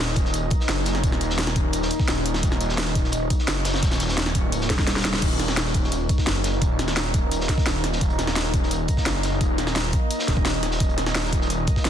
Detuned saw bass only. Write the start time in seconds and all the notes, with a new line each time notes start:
Already playing: D#1
0.69 F#1
1.04 D#1
2.08 D#1
2.43 D#1
3.48 F#1
3.83 D#1
4.44 D1
5.22 D#1
6.27 F#1
6.62 D#1
7.66 D#1
8.01 D#1
9.06 F#1
9.41 D#1
10.28 D#1
10.45 D#1
10.80 D#1
11.85 F#1